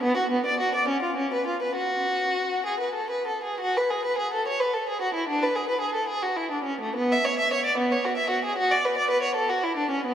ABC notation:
X:1
M:6/8
L:1/16
Q:3/8=72
K:F#m
V:1 name="Violin"
B, F B, d F d C ^E C B E B | F6 G B A B A G | F B G B G A c B A G F E | D B G B G A G F E D C A, |
B, e c e c d B, c F e F G | F d B d B c A F E D C B, |]